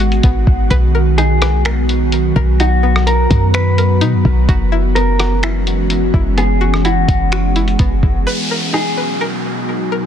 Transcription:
0.00 0.21 G#1 loud
0.00 4.45 D#3 medium
0.00 0.67 G#3 medium
0.00 0.22 B3 medium
0.00 8.23 B3 medium
0.00 0.67 F#4 medium
0.00 0.71 F#4 medium
0.00 4.45 F#4 medium
0.00 0.71 G#4 loud
0.00 closed hi-hat medium
0.12 closed hi-hat soft
0.23 0.46 G#1 loud
0.23 0.71 B3 medium
0.23 kick loud
0.23 closed hi-hat medium
0.47 0.70 G#1 loud
0.47 kick loud
0.70 2.32 B1 loud
0.70 4.45 F#3 medium
0.70 1.41 B4 loud
0.70 kick loud
0.70 closed hi-hat medium
0.95 1.64 A#4 medium
1.18 2.59 D#4 medium
1.18 1.62 G#4 medium
1.18 closed hi-hat medium
1.42 2.83 B4 medium
1.42 cross-stick loud
1.42 closed hi-hat medium
1.65 2.35 A#4 medium
1.65 finger snap loud
1.65 closed hi-hat medium
1.89 closed hi-hat medium
2.12 closed hi-hat medium
2.36 3.27 B1 loud
2.36 3.77 A#4 medium
2.36 kick medium
2.60 4.00 D#4 medium
2.60 3.04 F#4 loud
2.60 closed hi-hat medium
2.83 4.25 B3 medium
2.96 cross-stick medium
3.07 3.51 A#4 medium
3.07 4.49 A#5 medium
3.07 closed hi-hat medium
3.31 4.03 F#2 loud
3.31 kick loud
3.31 closed hi-hat medium
3.54 4.49 B4 medium
3.54 3.99 B4 medium
3.54 finger snap loud
3.54 closed hi-hat medium
3.78 4.49 A#4 medium
3.78 closed hi-hat medium
4.01 4.15 B2 loud
4.01 4.49 D#4 loud
4.01 closed hi-hat medium
4.13 4.24 F#2 loud
4.25 4.48 B1 loud
4.25 kick loud
4.49 6.10 F#1 loud
4.49 8.23 E3 medium
4.49 8.23 G#3 medium
4.49 8.23 C#4 medium
4.49 5.18 F#4 loud
4.49 6.36 F#4 medium
4.49 kick loud
4.49 closed hi-hat medium
4.72 5.42 E4 medium
4.95 6.36 B3 medium
4.95 5.40 A#4 medium
4.95 closed hi-hat medium
5.19 6.60 F#4 medium
5.19 cross-stick loud
5.19 closed hi-hat medium
5.43 6.13 E4 medium
5.43 finger snap loud
5.43 closed hi-hat medium
5.67 closed hi-hat medium
5.90 closed hi-hat medium
6.14 7.05 F#1 loud
6.14 6.83 E4 medium
6.14 kick loud
6.37 7.78 B3 loud
6.37 8.25 G#4 medium
6.37 6.82 G#4 medium
6.37 closed hi-hat medium
6.61 7.31 F#4 medium
6.74 cross-stick medium
6.85 7.55 E4 loud
6.85 8.23 F#4 loud
6.85 closed hi-hat medium
7.08 7.77 F#1 loud
7.08 kick loud
7.08 closed hi-hat medium
7.32 8.27 F#4 loud
7.32 finger snap loud
7.32 closed hi-hat medium
7.56 8.27 E4 medium
7.56 closed hi-hat medium
7.68 closed hi-hat soft
7.79 8.02 F#1 loud
7.79 8.26 B3 medium
7.79 kick loud
7.79 closed hi-hat medium
8.03 8.26 F#1 loud
8.03 kick loud
8.26 10.06 B2 medium
8.26 10.06 F#3 medium
8.26 10.06 B3 medium
8.26 10.06 D#4 medium
8.26 10.06 F#4 medium
8.26 8.96 B4 loud
8.26 downlifter medium
8.51 9.20 A#4 medium
8.74 10.06 D#4 medium
8.74 9.18 G#4 medium
8.97 10.06 B4 medium
9.21 9.91 A#4 medium
9.92 10.06 A#4 medium

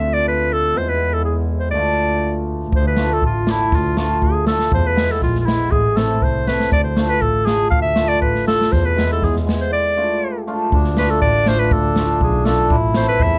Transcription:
0.00 0.75 D2 medium
0.00 0.81 A3 soft
0.00 0.81 C4 soft
0.00 1.75 D4 soft
0.00 0.82 F4 soft
0.00 0.15 E5 medium
0.14 0.25 D5 medium
0.28 0.54 B4 medium
0.53 0.79 A4 loud
0.73 1.73 E2 medium
0.73 1.78 G#3 soft
0.73 4.89 B3 soft
0.73 1.83 E4 medium
0.73 0.90 C5 medium
0.89 1.15 B4 medium
1.13 1.24 A4 medium
1.25 1.36 G#4 medium
1.59 1.70 C5 medium
1.71 2.70 D2 medium
1.71 2.97 A3 medium
1.71 2.43 D5 medium
1.75 2.98 D4 soft
1.75 2.98 F4 medium
2.72 3.02 D2 medium
2.72 2.86 C5 medium
2.72 kick medium
2.87 3.14 B4 medium
2.96 3.10 A3 medium
2.96 3.10 D4 soft
2.96 3.10 F4 medium
2.96 snare medium
3.13 3.24 A4 medium
3.22 3.38 A1 medium
3.22 3.53 F4 medium
3.22 kick medium
3.46 3.59 A3 soft
3.46 3.60 D4 medium
3.46 3.60 E4 medium
3.46 snare medium
3.51 3.77 E4 medium
3.72 4.02 D2 medium
3.72 3.98 F4 medium
3.72 kick loud
3.72 snare soft
3.97 4.10 A3 medium
3.97 4.10 D4 soft
3.97 4.10 F4 medium
3.97 4.25 F4 medium
3.97 snare medium
4.22 4.37 D2 medium
4.22 4.47 G#4 medium
4.22 kick medium
4.46 4.59 A3 medium
4.46 4.59 D4 medium
4.46 4.60 F4 medium
4.46 4.71 A4 medium
4.46 snare medium
4.59 snare medium
4.72 5.02 E2 medium
4.72 4.88 C5 medium
4.72 kick medium
4.87 5.13 B4 medium
4.96 5.46 G#3 medium
4.96 5.09 B3 medium
4.96 5.09 E4 medium
4.96 snare medium
5.10 5.23 A4 medium
5.10 snare soft
5.22 5.37 A#1 medium
5.22 5.40 F4 medium
5.22 kick medium
5.22 snare soft
5.35 snare soft
5.40 5.48 F4 medium
5.46 5.77 G#3 medium
5.46 5.60 B3 soft
5.46 5.73 E4 medium
5.46 5.60 E4 medium
5.46 snare medium
5.71 6.02 A1 medium
5.71 5.99 G#4 medium
5.71 kick medium
5.95 6.09 A3 medium
5.95 6.10 C4 soft
5.95 6.10 E4 medium
5.95 6.25 A4 medium
5.95 snare medium
6.22 6.37 C2 medium
6.22 6.49 C5 medium
6.22 kick medium
6.47 6.60 A3 medium
6.47 6.60 C4 soft
6.47 6.60 E4 medium
6.47 6.72 B4 medium
6.47 snare medium
6.60 snare medium
6.71 7.01 D2 medium
6.71 6.83 D5 medium
6.71 kick medium
6.84 7.11 C5 medium
6.96 7.09 A3 medium
6.96 7.09 D4 soft
6.96 7.10 F4 medium
6.96 snare medium
7.09 7.23 B4 medium
7.21 7.37 A1 medium
7.21 7.47 A4 medium
7.21 kick medium
7.46 7.59 A3 soft
7.46 7.59 D4 soft
7.46 7.60 F4 medium
7.46 7.70 G#4 medium
7.46 snare medium
7.70 8.01 D2 medium
7.70 7.81 F5 medium
7.70 kick medium
7.82 8.10 E5 medium
7.95 8.09 A3 medium
7.95 8.09 D4 medium
7.95 8.09 F4 medium
7.95 snare medium
8.09 8.21 D5 medium
8.22 8.37 A1 medium
8.22 8.45 B4 medium
8.22 kick medium
8.35 snare soft
8.46 8.59 A3 soft
8.46 8.59 D4 soft
8.46 8.59 F4 medium
8.46 8.74 A4 loud
8.46 snare medium
8.61 snare medium
8.72 9.02 E2 medium
8.72 8.87 C5 medium
8.72 kick medium
8.72 snare soft
8.85 9.10 B4 medium
8.96 9.45 G#3 medium
8.96 9.10 B3 medium
8.96 9.10 E4 medium
8.96 snare medium
9.12 9.26 A4 medium
9.23 9.37 E2 medium
9.23 9.36 G#4 medium
9.23 kick medium
9.23 snare soft
9.36 snare soft
9.47 9.77 G#3 medium
9.47 9.60 B3 medium
9.47 9.60 E4 medium
9.47 snare medium
9.61 9.72 C5 medium
9.73 10.43 D5 medium
9.97 10.09 A3 medium
9.97 10.10 D4 medium
9.97 10.10 F4 medium
10.47 10.59 A3 medium
10.47 10.59 D4 medium
10.47 10.60 F4 medium
10.72 11.02 D2 medium
10.72 12.76 D4 medium
10.72 kick medium
10.84 snare soft
10.97 11.10 A3 medium
10.97 11.10 D4 soft
10.97 11.10 F4 medium
10.97 11.12 B4 medium
10.97 snare medium
11.10 11.21 A4 medium
11.22 11.51 A1 medium
11.22 11.49 D5 medium
11.22 kick medium
11.46 11.59 A3 medium
11.46 11.59 D4 medium
11.46 11.59 F4 medium
11.46 11.61 C5 loud
11.46 snare medium
11.59 11.74 B4 medium
11.71 12.01 D2 medium
11.71 12.21 A4 medium
11.71 kick loud
11.96 12.09 A3 medium
11.96 12.09 D4 soft
11.96 12.09 F4 medium
11.96 snare medium
12.20 12.50 B1 medium
12.20 12.47 G#4 medium
12.20 kick medium
12.45 12.58 A3 medium
12.45 12.58 D4 medium
12.45 12.58 F4 medium
12.45 12.70 A4 medium
12.45 snare medium
12.70 13.00 A1 medium
12.70 13.39 E4 loud
12.70 kick medium
12.94 13.07 A3 medium
12.94 13.08 C4 medium
12.94 13.08 E4 medium
12.94 13.07 C5 medium
12.94 snare loud
13.09 13.24 B4 medium
13.20 13.39 E2 medium
13.20 13.39 E5 medium
13.20 kick medium

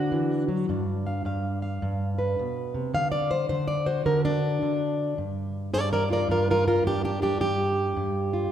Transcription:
0.00 0.66 D3 medium
0.00 0.48 D4 medium
0.00 0.89 F#4 loud
0.12 0.48 E3 medium
0.48 0.68 F#3 medium
0.69 1.24 G2 medium
0.69 3.34 D4 soft
1.07 1.25 F5 soft
1.25 1.81 G2 medium
1.25 1.61 F5 soft
1.62 2.91 F5 soft
1.82 2.37 G2 medium
2.19 2.91 B4 medium
2.39 2.74 B2 medium
2.74 2.94 C3 medium
2.94 3.48 D3 medium
2.94 3.11 F5 loud
3.12 3.30 D5 medium
3.31 3.48 C5 loud
3.49 4.05 D3 medium
3.49 3.68 C5 loud
3.68 3.86 D5 loud
3.86 5.15 F#4 medium
3.86 4.05 C5 loud
4.06 4.61 D3 medium
4.06 4.24 A#4 loud
4.25 5.17 D4 loud
4.62 5.15 D3 medium
5.18 5.74 G2 medium
5.74 6.28 G2 medium
5.74 5.79 A#4 medium
5.74 5.92 D5 loud
5.93 6.03 A#4 medium
5.93 6.11 D5 loud
6.10 6.31 F4 medium
6.10 6.20 A#4 loud
6.10 6.30 D5 loud
6.28 6.83 G2 medium
6.28 6.48 F4 medium
6.28 6.48 A#4 medium
6.51 6.66 F4 medium
6.51 6.66 A#4 loud
6.68 6.85 F4 medium
6.68 6.85 A#4 medium
6.84 7.40 G2 medium
6.84 7.04 D4 medium
6.84 7.04 G4 loud
7.05 7.21 D4 medium
7.05 7.22 G4 medium
7.22 7.40 D4 medium
7.22 7.40 G4 loud
7.41 7.96 G2 medium
7.41 8.52 G4 loud
7.97 8.50 G2 medium
8.33 8.52 F4 soft

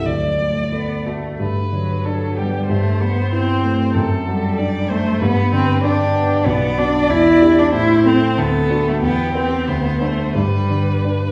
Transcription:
0.05 1.36 D2 soft
0.05 0.62 F#3 soft
0.05 1.07 D5 soft
0.39 0.93 A3 soft
0.72 1.08 B3 soft
0.72 1.26 A4 soft
1.06 1.40 A3 soft
1.06 1.40 F#4 soft
1.40 2.66 G2 soft
1.40 2.07 B4 soft
1.72 2.25 D3 soft
1.72 2.39 F#3 soft
2.05 2.57 D4 soft
2.05 2.38 A4 soft
2.37 2.71 G3 soft
2.37 2.69 B3 soft
2.37 2.68 G4 soft
2.69 3.92 G2 soft
2.69 3.03 A3 medium
2.69 3.93 C5 soft
3.01 3.52 G3 soft
3.01 3.32 B3 medium
3.32 3.95 C4 medium
3.32 3.83 E4 soft
3.64 3.96 A3 soft
3.95 5.18 F#2 soft
3.95 4.60 A4 soft
4.27 4.78 F#3 soft
4.27 4.93 G3 medium
4.58 5.09 D4 soft
4.58 4.92 D5 soft
4.90 5.22 A3 soft
4.90 5.24 A3 medium
4.90 5.21 C5 medium
5.21 6.43 G2 medium
5.21 5.53 B3 medium
5.21 5.85 B4 soft
5.52 6.03 D3 soft
5.52 5.84 C4 medium
5.84 6.34 D4 soft
5.84 6.48 D4 medium
5.84 6.45 G4 soft
6.15 6.46 B3 soft
6.46 7.08 B1 medium
6.46 6.80 B3 medium
6.46 7.69 D5 medium
6.77 7.06 D4 soft
6.77 7.11 D4 medium
6.77 7.07 F#4 soft
7.09 7.71 E2 medium
7.09 7.61 E4 medium
7.41 7.70 D4 soft
7.41 7.70 G4 soft
7.59 7.73 D4 medium
7.73 8.36 A2 medium
7.73 8.05 E4 medium
7.73 8.39 C5 soft
8.05 8.35 C4 soft
8.05 8.40 C4 medium
8.05 8.35 A4 soft
8.38 9.00 D2 medium
8.38 8.90 B3 medium
8.38 9.01 A4 soft
8.70 8.99 D4 soft
8.70 8.99 F#4 soft
8.88 9.02 A3 medium
9.02 9.66 E2 medium
9.02 9.34 B3 medium
9.02 9.69 G4 soft
9.35 9.65 B3 soft
9.35 9.69 C4 medium
9.35 9.65 B4 soft
9.67 10.34 D2 soft
9.67 10.03 B3 medium
9.67 10.35 C5 soft
10.01 10.37 A3 medium
10.01 10.32 D4 soft
10.01 10.32 C5 soft
10.35 11.32 G2 soft
10.35 11.05 G3 medium
10.35 11.32 B4 soft
10.70 11.25 D3 soft
11.04 11.32 D4 soft

